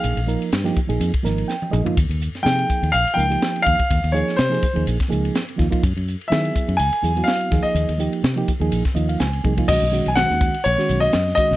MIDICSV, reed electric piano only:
0, 0, Header, 1, 2, 480
1, 0, Start_track
1, 0, Tempo, 482315
1, 39, Time_signature, 4, 2, 24, 8
1, 11511, End_track
2, 0, Start_track
2, 0, Title_t, "Reed electric piano"
2, 0, Program_c, 0, 4
2, 0, Note_on_c, 0, 53, 69
2, 0, Note_on_c, 0, 58, 66
2, 0, Note_on_c, 0, 63, 56
2, 0, Note_on_c, 0, 68, 69
2, 181, Note_off_c, 0, 53, 0
2, 185, Note_off_c, 0, 58, 0
2, 185, Note_off_c, 0, 63, 0
2, 190, Note_off_c, 0, 68, 0
2, 263, Note_on_c, 0, 53, 75
2, 269, Note_on_c, 0, 58, 72
2, 273, Note_on_c, 0, 63, 66
2, 282, Note_on_c, 0, 70, 77
2, 490, Note_off_c, 0, 53, 0
2, 493, Note_off_c, 0, 58, 0
2, 495, Note_off_c, 0, 63, 0
2, 499, Note_off_c, 0, 70, 0
2, 633, Note_on_c, 0, 53, 98
2, 638, Note_on_c, 0, 58, 84
2, 641, Note_on_c, 0, 63, 78
2, 650, Note_on_c, 0, 67, 97
2, 778, Note_off_c, 0, 53, 0
2, 780, Note_off_c, 0, 58, 0
2, 782, Note_off_c, 0, 63, 0
2, 786, Note_off_c, 0, 67, 0
2, 867, Note_on_c, 0, 53, 72
2, 876, Note_on_c, 0, 58, 63
2, 882, Note_on_c, 0, 63, 69
2, 888, Note_on_c, 0, 68, 94
2, 1094, Note_off_c, 0, 53, 0
2, 1098, Note_off_c, 0, 58, 0
2, 1101, Note_off_c, 0, 63, 0
2, 1104, Note_off_c, 0, 68, 0
2, 1222, Note_on_c, 0, 53, 69
2, 1228, Note_on_c, 0, 58, 72
2, 1234, Note_on_c, 0, 63, 67
2, 1242, Note_on_c, 0, 70, 80
2, 1472, Note_on_c, 0, 79, 62
2, 1525, Note_off_c, 0, 53, 0
2, 1528, Note_off_c, 0, 58, 0
2, 1531, Note_off_c, 0, 63, 0
2, 1535, Note_off_c, 0, 70, 0
2, 1696, Note_on_c, 0, 53, 75
2, 1699, Note_off_c, 0, 79, 0
2, 1702, Note_on_c, 0, 58, 65
2, 1706, Note_on_c, 0, 75, 67
2, 1711, Note_on_c, 0, 63, 68
2, 1715, Note_on_c, 0, 68, 85
2, 1786, Note_off_c, 0, 53, 0
2, 1790, Note_off_c, 0, 58, 0
2, 1794, Note_off_c, 0, 63, 0
2, 1796, Note_off_c, 0, 68, 0
2, 1831, Note_on_c, 0, 53, 75
2, 1833, Note_on_c, 0, 58, 70
2, 1840, Note_on_c, 0, 63, 69
2, 1849, Note_on_c, 0, 65, 82
2, 1935, Note_off_c, 0, 75, 0
2, 1950, Note_off_c, 0, 53, 0
2, 1951, Note_off_c, 0, 58, 0
2, 1955, Note_off_c, 0, 63, 0
2, 1959, Note_off_c, 0, 65, 0
2, 2415, Note_on_c, 0, 53, 65
2, 2422, Note_on_c, 0, 58, 55
2, 2432, Note_on_c, 0, 63, 55
2, 2436, Note_on_c, 0, 68, 74
2, 2866, Note_off_c, 0, 53, 0
2, 2869, Note_off_c, 0, 58, 0
2, 2874, Note_off_c, 0, 63, 0
2, 2876, Note_off_c, 0, 68, 0
2, 3139, Note_on_c, 0, 53, 68
2, 3144, Note_on_c, 0, 58, 63
2, 3149, Note_on_c, 0, 63, 68
2, 3154, Note_on_c, 0, 70, 68
2, 3228, Note_off_c, 0, 53, 0
2, 3231, Note_off_c, 0, 58, 0
2, 3233, Note_off_c, 0, 63, 0
2, 3236, Note_off_c, 0, 70, 0
2, 3276, Note_on_c, 0, 53, 64
2, 3278, Note_on_c, 0, 58, 60
2, 3286, Note_on_c, 0, 63, 54
2, 3290, Note_on_c, 0, 67, 67
2, 3787, Note_off_c, 0, 53, 0
2, 3788, Note_off_c, 0, 58, 0
2, 3793, Note_off_c, 0, 63, 0
2, 3794, Note_off_c, 0, 67, 0
2, 4104, Note_on_c, 0, 53, 74
2, 4110, Note_on_c, 0, 58, 72
2, 4114, Note_on_c, 0, 63, 67
2, 4125, Note_on_c, 0, 68, 87
2, 4331, Note_off_c, 0, 53, 0
2, 4334, Note_off_c, 0, 58, 0
2, 4336, Note_off_c, 0, 63, 0
2, 4342, Note_off_c, 0, 68, 0
2, 4474, Note_on_c, 0, 53, 80
2, 4481, Note_on_c, 0, 58, 77
2, 4488, Note_on_c, 0, 63, 65
2, 4495, Note_on_c, 0, 68, 80
2, 4619, Note_off_c, 0, 53, 0
2, 4622, Note_off_c, 0, 58, 0
2, 4626, Note_off_c, 0, 63, 0
2, 4629, Note_off_c, 0, 68, 0
2, 4713, Note_on_c, 0, 53, 70
2, 4724, Note_on_c, 0, 58, 66
2, 4730, Note_on_c, 0, 63, 59
2, 4735, Note_on_c, 0, 68, 69
2, 4937, Note_off_c, 0, 53, 0
2, 4942, Note_off_c, 0, 58, 0
2, 4946, Note_off_c, 0, 63, 0
2, 4948, Note_off_c, 0, 68, 0
2, 5058, Note_on_c, 0, 53, 79
2, 5064, Note_on_c, 0, 58, 69
2, 5070, Note_on_c, 0, 63, 65
2, 5076, Note_on_c, 0, 68, 82
2, 5363, Note_off_c, 0, 53, 0
2, 5366, Note_off_c, 0, 58, 0
2, 5369, Note_off_c, 0, 63, 0
2, 5372, Note_off_c, 0, 68, 0
2, 5539, Note_on_c, 0, 53, 79
2, 5548, Note_on_c, 0, 58, 72
2, 5550, Note_on_c, 0, 63, 68
2, 5559, Note_on_c, 0, 65, 81
2, 5628, Note_off_c, 0, 53, 0
2, 5633, Note_off_c, 0, 58, 0
2, 5634, Note_off_c, 0, 63, 0
2, 5638, Note_off_c, 0, 65, 0
2, 5670, Note_on_c, 0, 53, 74
2, 5677, Note_on_c, 0, 58, 76
2, 5683, Note_on_c, 0, 63, 73
2, 5691, Note_on_c, 0, 65, 86
2, 5790, Note_off_c, 0, 53, 0
2, 5793, Note_off_c, 0, 58, 0
2, 5796, Note_off_c, 0, 63, 0
2, 5800, Note_off_c, 0, 65, 0
2, 6269, Note_on_c, 0, 54, 69
2, 6275, Note_on_c, 0, 59, 67
2, 6282, Note_on_c, 0, 64, 63
2, 6289, Note_on_c, 0, 68, 79
2, 6713, Note_off_c, 0, 54, 0
2, 6716, Note_off_c, 0, 59, 0
2, 6719, Note_off_c, 0, 64, 0
2, 6723, Note_off_c, 0, 68, 0
2, 6988, Note_on_c, 0, 54, 63
2, 6993, Note_on_c, 0, 59, 60
2, 7001, Note_on_c, 0, 64, 68
2, 7007, Note_on_c, 0, 68, 76
2, 7073, Note_off_c, 0, 54, 0
2, 7076, Note_off_c, 0, 59, 0
2, 7079, Note_off_c, 0, 64, 0
2, 7082, Note_off_c, 0, 68, 0
2, 7123, Note_on_c, 0, 54, 67
2, 7127, Note_on_c, 0, 59, 56
2, 7133, Note_on_c, 0, 64, 56
2, 7141, Note_on_c, 0, 66, 72
2, 7465, Note_on_c, 0, 53, 70
2, 7473, Note_on_c, 0, 58, 66
2, 7476, Note_off_c, 0, 54, 0
2, 7476, Note_on_c, 0, 63, 64
2, 7478, Note_off_c, 0, 59, 0
2, 7481, Note_off_c, 0, 64, 0
2, 7485, Note_off_c, 0, 66, 0
2, 7487, Note_on_c, 0, 68, 82
2, 7865, Note_off_c, 0, 53, 0
2, 7869, Note_off_c, 0, 58, 0
2, 7870, Note_off_c, 0, 63, 0
2, 7876, Note_off_c, 0, 68, 0
2, 7943, Note_on_c, 0, 53, 73
2, 7945, Note_on_c, 0, 58, 68
2, 7955, Note_on_c, 0, 63, 76
2, 7963, Note_on_c, 0, 67, 85
2, 8170, Note_off_c, 0, 53, 0
2, 8172, Note_off_c, 0, 58, 0
2, 8176, Note_off_c, 0, 63, 0
2, 8180, Note_off_c, 0, 67, 0
2, 8314, Note_on_c, 0, 53, 95
2, 8321, Note_on_c, 0, 58, 82
2, 8329, Note_on_c, 0, 63, 80
2, 8338, Note_on_c, 0, 67, 105
2, 8458, Note_off_c, 0, 53, 0
2, 8462, Note_off_c, 0, 58, 0
2, 8466, Note_off_c, 0, 63, 0
2, 8470, Note_off_c, 0, 67, 0
2, 8554, Note_on_c, 0, 53, 82
2, 8559, Note_on_c, 0, 58, 71
2, 8568, Note_on_c, 0, 63, 74
2, 8573, Note_on_c, 0, 68, 98
2, 8777, Note_off_c, 0, 53, 0
2, 8780, Note_off_c, 0, 58, 0
2, 8784, Note_off_c, 0, 63, 0
2, 8786, Note_off_c, 0, 68, 0
2, 8895, Note_on_c, 0, 53, 67
2, 8906, Note_on_c, 0, 58, 68
2, 8906, Note_on_c, 0, 75, 60
2, 8907, Note_on_c, 0, 63, 63
2, 8917, Note_on_c, 0, 65, 72
2, 9034, Note_off_c, 0, 75, 0
2, 9044, Note_on_c, 0, 77, 61
2, 9148, Note_off_c, 0, 77, 0
2, 9155, Note_on_c, 0, 80, 60
2, 9201, Note_off_c, 0, 53, 0
2, 9206, Note_off_c, 0, 58, 0
2, 9207, Note_off_c, 0, 63, 0
2, 9211, Note_off_c, 0, 65, 0
2, 9390, Note_on_c, 0, 53, 80
2, 9394, Note_on_c, 0, 58, 76
2, 9405, Note_on_c, 0, 63, 72
2, 9410, Note_on_c, 0, 68, 87
2, 9473, Note_off_c, 0, 53, 0
2, 9475, Note_off_c, 0, 58, 0
2, 9480, Note_off_c, 0, 63, 0
2, 9483, Note_off_c, 0, 68, 0
2, 9519, Note_on_c, 0, 53, 71
2, 9525, Note_on_c, 0, 58, 67
2, 9534, Note_on_c, 0, 63, 71
2, 9537, Note_on_c, 0, 65, 82
2, 9603, Note_off_c, 0, 80, 0
2, 9631, Note_on_c, 0, 51, 72
2, 9633, Note_off_c, 0, 53, 0
2, 9636, Note_off_c, 0, 58, 0
2, 9636, Note_on_c, 0, 56, 66
2, 9641, Note_off_c, 0, 63, 0
2, 9642, Note_off_c, 0, 65, 0
2, 9642, Note_on_c, 0, 61, 68
2, 9653, Note_on_c, 0, 66, 87
2, 9788, Note_off_c, 0, 51, 0
2, 9790, Note_off_c, 0, 56, 0
2, 9793, Note_off_c, 0, 61, 0
2, 9798, Note_off_c, 0, 66, 0
2, 9866, Note_on_c, 0, 51, 75
2, 9869, Note_on_c, 0, 56, 72
2, 9872, Note_on_c, 0, 61, 73
2, 9882, Note_on_c, 0, 66, 79
2, 10025, Note_off_c, 0, 51, 0
2, 10026, Note_off_c, 0, 56, 0
2, 10028, Note_off_c, 0, 61, 0
2, 10033, Note_off_c, 0, 66, 0
2, 10109, Note_on_c, 0, 51, 78
2, 10111, Note_on_c, 0, 56, 65
2, 10120, Note_on_c, 0, 61, 64
2, 10130, Note_on_c, 0, 66, 71
2, 10485, Note_off_c, 0, 51, 0
2, 10486, Note_off_c, 0, 56, 0
2, 10490, Note_off_c, 0, 61, 0
2, 10495, Note_off_c, 0, 66, 0
2, 10717, Note_on_c, 0, 51, 71
2, 10725, Note_on_c, 0, 56, 66
2, 10732, Note_on_c, 0, 61, 71
2, 10738, Note_on_c, 0, 66, 89
2, 11072, Note_off_c, 0, 51, 0
2, 11077, Note_off_c, 0, 56, 0
2, 11080, Note_off_c, 0, 61, 0
2, 11083, Note_off_c, 0, 66, 0
2, 11304, Note_on_c, 0, 51, 61
2, 11308, Note_on_c, 0, 56, 64
2, 11319, Note_on_c, 0, 61, 62
2, 11322, Note_on_c, 0, 66, 72
2, 11462, Note_off_c, 0, 51, 0
2, 11464, Note_off_c, 0, 56, 0
2, 11470, Note_off_c, 0, 61, 0
2, 11471, Note_off_c, 0, 66, 0
2, 11511, End_track
0, 0, End_of_file